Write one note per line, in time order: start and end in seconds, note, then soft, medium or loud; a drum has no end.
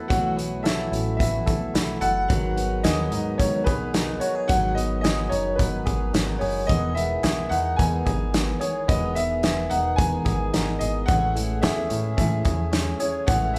0.00 2.26 A3 medium
0.00 0.36 B3 medium
0.00 0.11 E4 soft
0.00 0.90 E4 medium
0.00 2.26 E4 medium
0.00 0.63 A4 medium
0.08 0.89 B1 loud
0.08 0.38 B2 medium
0.08 0.38 E3 medium
0.08 2.28 F#3 medium
0.08 0.38 A3 medium
0.08 2.27 C#4 medium
0.08 0.38 E4 medium
0.08 0.66 F#5 medium
0.08 kick loud
0.08 closed hi-hat medium
0.12 0.36 F#4 loud
0.37 0.65 A3 soft
0.37 1.19 B3 medium
0.37 0.65 E4 soft
0.37 0.65 F#4 soft
0.37 closed hi-hat medium
0.63 0.92 E3 medium
0.63 0.93 A3 medium
0.63 0.92 E4 medium
0.63 1.45 A4 medium
0.63 1.15 E5 medium
0.63 snare loud
0.63 closed hi-hat medium
0.68 0.91 F#4 medium
0.92 1.39 A1 medium
0.92 1.20 A3 soft
0.92 1.73 E4 medium
0.92 1.21 E4 soft
0.92 1.20 F#4 medium
0.92 closed hi-hat medium
1.17 1.48 B2 medium
1.17 1.48 E3 medium
1.17 2.56 B3 medium
1.17 2.03 E5 medium
1.17 kick loud
1.21 1.48 A3 medium
1.21 1.48 E4 medium
1.21 1.46 F#4 medium
1.21 closed hi-hat loud
1.46 1.71 B1 medium
1.46 1.76 E4 medium
1.46 1.75 F#4 medium
1.46 2.00 A4 medium
1.46 kick medium
1.46 closed hi-hat medium
1.51 1.74 A3 soft
1.74 1.98 B1 medium
1.74 2.02 E3 medium
1.74 2.03 A3 medium
1.74 2.35 E4 medium
1.74 2.02 E4 medium
1.74 2.01 F#4 medium
1.74 snare loud
1.74 closed hi-hat loud
2.01 2.26 F#1 loud
2.01 2.31 A3 soft
2.01 2.30 E4 soft
2.01 2.30 F#4 soft
2.01 2.35 A4 medium
2.01 2.87 F#5 loud
2.01 closed hi-hat medium
2.29 2.86 G#1 loud
2.29 2.57 G#2 medium
2.29 11.04 D#3 medium
2.29 2.58 D#3 medium
2.29 4.47 F#3 medium
2.29 2.58 F#3 medium
2.29 6.65 G#3 medium
2.29 2.58 B3 medium
2.29 2.56 D#4 medium
2.29 6.65 F#4 medium
2.29 6.65 B4 medium
2.29 kick loud
2.29 closed hi-hat medium
2.56 2.84 F#3 soft
2.56 3.39 B3 medium
2.56 2.85 B3 soft
2.56 2.85 D#4 medium
2.56 closed hi-hat medium
2.83 3.08 D#2 loud
2.83 3.12 D#3 medium
2.83 3.13 F#3 medium
2.83 3.13 B3 medium
2.83 3.66 G#4 medium
2.83 3.35 D#5 medium
2.83 snare loud
2.83 closed hi-hat medium
2.87 3.11 D#4 medium
3.11 3.35 G#2 medium
3.11 3.40 B3 medium
3.11 3.93 D#4 medium
3.11 3.40 D#4 medium
3.11 closed hi-hat medium
3.16 3.40 F#3 soft
3.38 3.63 G#2 loud
3.38 3.67 G#2 medium
3.38 3.68 D#3 medium
3.38 3.68 F#3 medium
3.38 4.75 B3 medium
3.38 3.68 B3 medium
3.38 3.67 C#5 medium
3.38 kick loud
3.38 closed hi-hat loud
3.42 3.66 D#4 medium
3.64 4.14 B1 medium
3.64 3.95 D#4 medium
3.64 4.21 G#4 medium
3.64 4.22 B4 medium
3.64 kick medium
3.64 closed hi-hat medium
3.69 3.95 F#3 soft
3.69 3.96 B3 soft
3.94 4.22 D#3 medium
3.94 4.23 F#3 medium
3.94 4.22 B3 medium
3.94 5.31 D#4 medium
3.94 4.21 D#4 medium
3.94 snare loud
3.94 closed hi-hat medium
4.20 4.50 B3 soft
4.20 4.50 D#4 medium
4.20 4.35 F#4 medium
4.20 4.49 C#5 medium
4.20 closed hi-hat medium
4.25 4.49 F#3 soft
4.35 5.02 G#4 medium
4.48 5.28 G#1 loud
4.48 4.77 G#2 medium
4.48 4.77 D#3 medium
4.48 6.69 F#3 medium
4.48 4.78 F#3 medium
4.48 4.77 B3 medium
4.48 4.75 D#4 medium
4.48 4.77 F#5 loud
4.48 kick loud
4.48 closed hi-hat medium
4.75 5.58 B3 medium
4.75 5.05 B3 soft
4.75 5.04 D#4 medium
4.75 5.00 D#5 medium
4.75 closed hi-hat medium
4.80 5.04 F#3 soft
5.01 5.32 D#3 medium
5.01 5.85 G#4 medium
5.01 5.31 D#5 medium
5.01 snare loud
5.01 closed hi-hat medium
5.05 5.32 F#3 medium
5.05 5.33 B3 medium
5.05 5.31 D#4 medium
5.29 5.78 F#1 medium
5.29 6.13 D#4 medium
5.29 5.60 D#4 medium
5.29 5.59 C#5 medium
5.29 closed hi-hat medium
5.34 5.60 F#3 soft
5.34 5.61 B3 soft
5.56 6.67 B3 medium
5.56 6.42 B4 medium
5.56 kick loud
5.56 closed hi-hat loud
5.60 5.87 G#2 medium
5.60 5.88 D#3 medium
5.60 5.88 F#3 medium
5.60 5.88 B3 medium
5.60 5.86 D#4 medium
5.86 6.10 G#1 medium
5.86 6.15 B3 soft
5.86 6.14 D#4 medium
5.86 6.41 G#4 medium
5.86 kick medium
5.86 closed hi-hat medium
5.90 6.15 F#3 soft
6.13 6.37 G#1 medium
6.13 6.42 D#3 medium
6.13 6.43 F#3 medium
6.13 6.42 B3 medium
6.13 6.27 C#4 medium
6.13 snare loud
6.13 closed hi-hat medium
6.18 6.40 D#4 medium
6.27 6.74 D#4 soft
6.39 6.65 F#1 medium
6.39 6.69 D#4 soft
6.39 7.23 G#4 medium
6.39 6.66 C#5 medium
6.39 open hi-hat medium
6.43 6.70 F#3 soft
6.43 6.70 B3 soft
6.67 7.16 E1 loud
6.67 11.05 E3 medium
6.67 6.97 E3 medium
6.67 6.97 G#3 medium
6.67 6.94 B3 medium
6.67 11.05 B3 medium
6.67 11.05 G#4 medium
6.67 6.96 D#5 loud
6.67 kick loud
6.67 closed hi-hat medium
6.71 6.96 B3 medium
6.71 6.95 D#4 medium
6.95 7.77 B3 medium
6.95 7.25 B3 soft
6.95 7.24 D#4 medium
6.95 7.52 E5 loud
6.95 closed hi-hat medium
6.99 7.23 G#3 soft
7.23 7.47 B1 loud
7.23 7.51 E3 medium
7.23 7.52 G#3 medium
7.23 7.52 B3 medium
7.23 7.51 D#4 medium
7.23 8.05 G#4 medium
7.23 snare loud
7.23 closed hi-hat medium
7.49 7.75 E2 medium
7.49 8.34 D#4 medium
7.49 7.79 D#4 medium
7.49 7.76 F#5 loud
7.49 closed hi-hat medium
7.54 7.80 G#3 soft
7.54 7.80 B3 medium
7.76 8.02 E2 loud
7.76 8.07 E3 medium
7.76 8.87 B3 medium
7.76 8.63 G#5 loud
7.76 kick loud
7.76 closed hi-hat medium
7.81 8.07 G#3 medium
7.81 8.07 B3 medium
7.81 8.05 D#4 medium
8.06 8.53 G#1 medium
8.06 8.34 G#3 soft
8.06 8.35 B3 soft
8.06 8.34 D#4 medium
8.06 8.60 G#4 medium
8.06 kick medium
8.06 closed hi-hat medium
8.34 8.62 E3 medium
8.34 8.62 G#3 medium
8.34 8.63 B3 medium
8.34 8.61 D#4 medium
8.34 snare loud
8.34 closed hi-hat loud
8.60 8.89 D#4 medium
8.60 9.43 G#4 medium
8.60 8.89 C#5 medium
8.60 closed hi-hat medium
8.64 8.89 G#3 soft
8.64 8.90 B3 soft
8.88 9.67 E1 loud
8.88 9.17 E3 medium
8.88 9.17 G#3 medium
8.88 9.14 B3 medium
8.88 9.17 B3 medium
8.88 9.16 D#4 medium
8.88 9.17 D#5 loud
8.88 kick loud
8.88 closed hi-hat medium
9.15 9.97 B3 medium
9.15 9.45 B3 soft
9.15 9.44 D#4 medium
9.15 9.72 E5 loud
9.15 closed hi-hat medium
9.43 9.71 E3 medium
9.43 9.72 G#3 medium
9.43 9.72 B3 medium
9.43 9.70 D#4 medium
9.43 10.25 G#4 medium
9.43 snare loud
9.43 closed hi-hat medium
9.70 10.18 E1 medium
9.70 9.99 B3 soft
9.70 10.52 D#4 medium
9.70 9.99 D#4 medium
9.70 9.99 F#5 loud
9.70 closed hi-hat medium
9.74 9.98 G#3 soft
9.96 10.26 E3 medium
9.96 10.26 G#3 medium
9.96 11.14 B3 medium
9.96 10.26 B3 medium
9.96 10.82 G#5 loud
9.96 kick loud
9.96 closed hi-hat loud
10.01 10.25 D#4 medium
10.25 10.49 G#1 medium
10.25 10.53 G#3 soft
10.25 10.54 B3 medium
10.25 10.54 D#4 medium
10.25 10.80 G#4 medium
10.25 kick medium
10.25 closed hi-hat medium
10.53 10.77 G#1 medium
10.53 10.81 E3 medium
10.53 10.82 G#3 medium
10.53 10.81 B3 medium
10.53 11.14 D#4 medium
10.53 10.80 D#4 medium
10.53 snare loud
10.53 closed hi-hat medium
10.79 11.05 G#1 medium
10.79 11.09 B3 soft
10.79 11.08 D#4 soft
10.79 11.38 G#4 medium
10.79 11.08 D#5 medium
10.79 closed hi-hat medium
10.84 11.09 G#3 soft
11.06 11.64 A1 loud
11.06 11.36 A2 medium
11.06 13.27 E3 medium
11.06 11.64 F#5 loud
11.06 kick loud
11.06 closed hi-hat medium
11.10 11.37 E3 medium
11.10 11.37 G#3 medium
11.10 13.59 A3 medium
11.10 13.59 C#4 medium
11.10 11.36 C#4 medium
11.10 11.34 E4 loud
11.10 13.59 G#4 medium
11.35 11.63 G#3 soft
11.35 12.17 A3 medium
11.35 11.64 C#4 soft
11.35 11.63 E4 medium
11.35 closed hi-hat medium
11.62 11.87 E2 loud
11.62 11.91 E3 medium
11.62 11.92 G#3 medium
11.62 12.43 G#4 medium
11.62 12.16 E5 loud
11.62 snare loud
11.62 closed hi-hat medium
11.66 11.92 C#4 medium
11.66 11.90 E4 medium
11.89 12.14 A2 medium
11.89 12.71 C#4 medium
11.89 12.19 C#4 soft
11.89 12.18 E4 medium
11.89 closed hi-hat medium
11.94 12.18 G#3 soft
12.17 12.41 A2 loud
12.17 12.46 A2 medium
12.17 12.46 E3 medium
12.17 12.46 G#3 medium
12.17 13.54 A3 medium
12.17 12.46 C#4 medium
12.17 12.44 E4 medium
12.17 12.96 E5 medium
12.17 kick loud
12.17 closed hi-hat loud
12.45 12.92 E2 medium
12.45 12.74 C#4 soft
12.45 12.73 E4 soft
12.45 12.99 G#4 medium
12.45 kick medium
12.45 closed hi-hat medium
12.49 12.73 G#3 soft
12.72 13.01 E3 medium
12.72 13.01 G#3 medium
12.72 13.59 C#4 medium
12.72 13.01 C#4 medium
12.72 snare loud
12.72 closed hi-hat loud
12.76 12.99 E4 medium
13.00 13.28 C#4 soft
13.00 13.28 E4 medium
13.00 13.59 G#4 medium
13.00 13.26 C#5 medium
13.00 closed hi-hat medium
13.04 13.27 G#3 soft
13.27 13.59 A1 loud
13.27 13.55 A2 medium
13.27 13.59 E3 medium
13.27 13.56 E3 medium
13.27 13.56 G#3 medium
13.27 13.56 C#4 medium
13.27 13.54 E4 loud
13.27 13.56 F#5 loud
13.27 kick loud
13.27 closed hi-hat medium
13.54 13.59 A3 medium
13.54 13.59 E4 medium
13.54 13.59 E5 medium